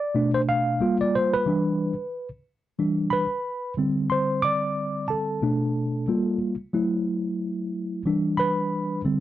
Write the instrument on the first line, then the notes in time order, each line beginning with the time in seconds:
tine electric piano
Already playing: D5
0.15 B2 A3 D4
0.34 C5
0.49 F5
0.80 G3 A#3 F4
1.01 D5
1.15 C5
1.33 B4
1.46 E3 G3 D4
2.78 E3 G3 D4
3.10 B4 B5
3.77 D3 G3 C4
4.10 C5 C6
4.42 D5 D6
5.08 A4 A5
5.42 B2 A3 D4
6.08 G3 A#3 F4
6.73 F#3 A3 E4
8.06 E3 G3 D4
8.37 B4 B5
9.04 D3 G3 C4